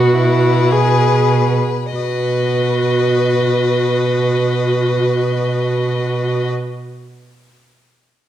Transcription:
Already playing: B2 F#4 B4
0.16 E4
0.72 G#4
1.95 B2 F#4 B4 D#5

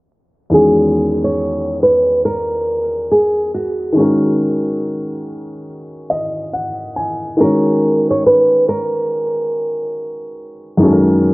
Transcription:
0.50 E2 D#3 G#3
0.54 C#4 F#4 G#4
1.24 C#5
1.83 B4
2.25 A#4
3.11 G#4
3.54 F#4
3.92 D#3 G#3 C#4
3.98 F#4 A#4
6.10 D#5
6.53 F#5
6.96 G#5
7.37 D#3 G#3 C#4 A#4
7.42 F#4 C#5
8.11 C#5
8.26 B4
8.68 A#4
10.77 F#2 D#3 G#3
10.82 C#4 F#4 A4
10.92 A#4

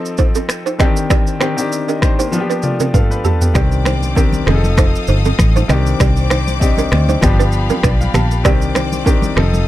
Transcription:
Already playing: F3 C4 D#4 A4
0.06 shaker
0.18 D#4 C5, kick, shaker
0.35 C4 A4, shaker
0.49 finger snap, cross-stick, shaker
0.66 D#4 C5, shaker
0.78 D3 C4 D4 G4 D#5, finger snap, kick, cross-stick, shaker
0.85 D#3
0.97 shaker
1.10 G4 D5, finger snap, kick, cross-stick, shaker
1.27 shaker
1.40 D#3 C4 D4 D#4 G4 C5, finger snap, cross-stick, shaker
1.57 D#3 C4 D4 G4, shaker
1.72 shaker
1.88 D4 G4 A#4 D#5, shaker
2.02 D#4 C5, finger snap, kick, cross-stick, shaker
2.19 A#3 D#4 G4 C5, shaker
2.31 F3 B3 D4 F4, high tom, shaker
2.41 G4
2.50 D4 B4, shaker
2.63 A3 F4 D5, mid tom, shaker
2.80 C4 A#4, mid tom, shaker
2.94 D4 A4 B4 F5, kick, mid tom, shaker
3.11 D4 B4, shaker
3.25 B3 G4 A4 A5, floor tom, shaker
3.41 B3 G4, floor tom, shaker
3.54 C2 D#3 C4 D4 G4 C5 D5 D6, finger snap, kick, cross-stick, shaker
3.72 shaker
3.85 D#4 C5, finger snap, cross-stick, high conga, shaker
4.03 high conga, shaker
4.15 D#3 C4 D4 G4 A#4, kick, shaker
4.33 high conga, shaker
4.46 F1 F3 C4 D#4 G#4 A4 F5 D#6, finger snap, cross-stick, low conga
4.55 A4
4.64 high conga, shaker
4.77 D#4 C5, finger snap, kick, cross-stick, shaker
4.95 shaker
5.07 G1 D#4 C5, shaker
5.25 C4 A4, high conga, shaker
5.39 A1, finger snap, kick, cross-stick, shaker
5.56 D#4 C5, high conga, shaker
5.68 C2 D#3 C4 D4 G4 C5 D5 D#5 D6, finger snap, cross-stick, high conga, low conga, shaker
5.87 shaker
6.00 C2 G4 D5, finger snap, kick, cross-stick, shaker
6.17 shaker
6.30 D#4 C5, finger snap, cross-stick, high conga, shaker
6.48 high conga, shaker
6.60 C4 D4 D#4 G4, kick, shaker
6.77 D4 A#4, high conga, shaker
6.92 D2, finger snap, cross-stick, low conga
7.09 D#4 C5, high conga, shaker
7.21 G1 F3 B3 D4 G4 F5 B5, finger snap, kick, cross-stick, shaker
7.39 D4 B4, shaker
7.52 shaker
7.70 C4 A#4, high conga, shaker
7.83 B1 D4 B4 D5, finger snap, kick, cross-stick, shaker
8.01 F5, high conga, shaker
8.14 A#1 B3 G4 A5, finger snap, cross-stick, high conga, low conga, shaker
8.31 shaker
8.44 C2 D#3 C4 D4 G4 C5 D5 D6, finger snap, kick, cross-stick, shaker
8.62 shaker
8.75 D#4 C5, finger snap, cross-stick, high conga, shaker
8.93 high conga, shaker
9.05 D#3 C4 D4 G4 A#4, kick, shaker
9.22 high conga, shaker
9.35 F1 F3 C4 D#4 A4 F5 D#6, finger snap, cross-stick, low conga
9.54 high conga, shaker

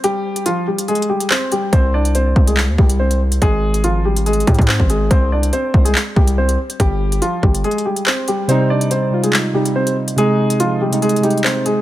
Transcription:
0.04 G3 G4, closed hi-hat
0.36 closed hi-hat
0.46 F3 F4, closed hi-hat
0.67 G3 G4
0.78 closed hi-hat
0.88 G#3 G#4, closed hi-hat
0.95 closed hi-hat
1.02 closed hi-hat
1.09 G3 G4
1.20 closed hi-hat
1.30 C4 C5, clap
1.52 G3 G4, closed hi-hat
1.73 C2 C4 C5, kick, closed hi-hat
1.94 D4 D5
2.05 closed hi-hat
2.15 C4 C5, closed hi-hat
2.36 C2, kick
2.47 G#3 G#4, closed hi-hat
2.57 clap
2.68 D#2
2.78 C2 G3 G4, kick
2.89 closed hi-hat
3.00 C4 C5
3.11 closed hi-hat
3.32 closed hi-hat
3.42 G#1 G#3 G#4, kick, closed hi-hat
3.74 closed hi-hat
3.84 F3 F4, closed hi-hat
4.05 G3 G4
4.16 closed hi-hat
4.26 G#3 G#4, closed hi-hat
4.33 closed hi-hat
4.40 closed hi-hat
4.47 G#2 G3 G4, kick, closed hi-hat
4.54 closed hi-hat
4.59 G#2, kick, closed hi-hat
4.68 C4 C5, clap
4.80 G#1, kick
4.90 G#3 G#4, closed hi-hat
5.11 C2 C4 C5, kick, closed hi-hat
5.32 D4 D5
5.43 closed hi-hat
5.53 C4 C5, closed hi-hat
5.74 C2, kick
5.85 G#3 G#4, closed hi-hat
5.95 clap
6.16 C2 G3 G4, kick
6.27 closed hi-hat
6.38 C4 C5
6.49 closed hi-hat
6.70 closed hi-hat
6.80 G1 G3 G4, kick, closed hi-hat
7.12 closed hi-hat
7.22 F3 F4, closed hi-hat
7.43 G1 G3 G4, kick
7.55 closed hi-hat
7.64 G#3 G#4, closed hi-hat
7.71 closed hi-hat
7.78 closed hi-hat
7.86 G3 G4
7.96 closed hi-hat
8.06 C4 C5, clap
8.28 G3 G4, closed hi-hat
8.48 C3 G3 C4 D#4 C5, closed hi-hat
8.70 D4 D5
8.81 closed hi-hat
8.91 C4 C5, closed hi-hat
9.10 C3 G3 F4
9.23 G#3 G#4, closed hi-hat
9.33 clap
9.53 C3 G3 D#4 G4
9.65 closed hi-hat
9.76 C4 C5
9.87 closed hi-hat
10.08 closed hi-hat
10.16 C3 G#3 D#4 G#4, closed hi-hat
10.50 closed hi-hat
10.60 F3 F4, closed hi-hat
10.81 G3 G4
10.90 C3 G#3 D#4, closed hi-hat
11.02 G#3 G#4, closed hi-hat
11.09 closed hi-hat
11.16 closed hi-hat
11.21 C3 G3 G#3 D#4 G4, closed hi-hat
11.30 closed hi-hat
11.38 closed hi-hat
11.44 C4 C5, clap
11.66 G#3 G#4, closed hi-hat

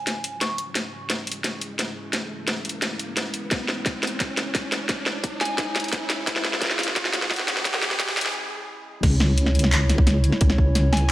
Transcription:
Already playing: G#3 C#4 E4 C#5 G#5, riser
0.07 snare, closed hi-hat
0.24 closed hi-hat
0.41 C#6, snare, closed hi-hat
0.50 C#6
0.58 closed hi-hat
0.75 G#4, snare, closed hi-hat
1.10 snare, closed hi-hat
1.27 closed hi-hat
1.32 closed hi-hat
1.44 snare, closed hi-hat
1.61 closed hi-hat
1.79 snare, closed hi-hat
2.13 snare, closed hi-hat
2.48 snare, closed hi-hat
2.65 closed hi-hat
2.69 closed hi-hat
2.82 snare, closed hi-hat
2.99 closed hi-hat
3.17 snare, closed hi-hat
3.34 closed hi-hat
3.51 C#5, kick, snare, closed hi-hat
3.68 snare
3.86 kick, snare, closed hi-hat
4.03 snare, closed hi-hat
4.07 closed hi-hat
4.20 kick, snare, closed hi-hat
4.37 snare, closed hi-hat
4.55 kick, snare, closed hi-hat
4.72 snare, closed hi-hat
4.89 kick, snare, closed hi-hat
5.06 snare
5.24 kick, closed hi-hat
5.41 G#5, snare, closed hi-hat
5.45 closed hi-hat
5.58 kick, snare, closed hi-hat
5.76 snare, closed hi-hat
5.80 closed hi-hat
5.84 closed hi-hat
5.88 closed hi-hat
5.93 kick, snare, closed hi-hat
6.10 snare, closed hi-hat
6.27 G#4, kick, snare, closed hi-hat
6.36 snare
6.45 snare
6.53 snare
6.61 kick, snare, closed hi-hat
6.64 snare
6.67 snare
6.70 snare
6.72 snare
6.74 snare
6.76 snare
6.79 snare, closed hi-hat
6.83 closed hi-hat
6.88 snare
6.96 kick, snare, closed hi-hat
7.05 snare
7.13 snare, closed hi-hat
7.22 snare
7.31 kick, snare, closed hi-hat
7.34 closed hi-hat
7.36 snare, closed hi-hat
7.48 snare, closed hi-hat
7.57 snare
7.65 kick, snare, closed hi-hat
7.74 snare
7.82 snare, closed hi-hat
7.91 snare
8.00 kick, snare, closed hi-hat
8.09 snare
8.17 snare, closed hi-hat
8.21 closed hi-hat
8.26 snare
9.03 C#2 G#3 C#4 E4 C#5, kick, snare, closed hi-hat, crash
9.20 snare
9.38 closed hi-hat
9.46 snare
9.55 closed hi-hat
9.59 closed hi-hat
9.64 snare
9.72 clap, closed hi-hat
9.89 snare, closed hi-hat
9.98 kick
10.07 snare, closed hi-hat
10.24 closed hi-hat
10.32 snare
10.41 C#2, kick, closed hi-hat
10.50 snare
10.58 kick
10.75 snare, closed hi-hat
10.92 G#5, snare, closed hi-hat
10.97 closed hi-hat

